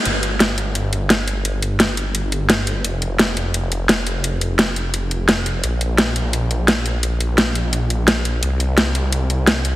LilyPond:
<<
  \new Staff \with { instrumentName = "Detuned saw bass" } { \clef bass \time 4/4 \key g \minor \tempo 4 = 172 g,,1~ | g,,1 | f,,1~ | f,,1 |
bes,,1~ | bes,,1 | c,1 | }
  \new DrumStaff \with { instrumentName = "Drums" } \drummode { \time 4/4 hh8 hh8 <hh sn>8 hh8 hh8 hh8 <hh sn>8 hh8 | hh8 hh8 <hh sn>8 hh8 hh8 hh8 <hh sn>8 hh8 | hh8 hh8 <hh sn>8 hh8 hh8 hh8 <hh sn>8 hh8 | hh8 hh8 <hh sn>8 hh8 hh8 hh8 <hh sn>8 hh8 |
hh8 hh8 <hh sn>8 hh8 hh8 hh8 <hh sn>8 hh8 | hh8 hh8 <hh sn>8 hh8 hh8 hh8 <hh sn>8 hh8 | hh8 hh8 <hh sn>8 hh8 hh8 hh8 <hh sn>8 hh8 | }
>>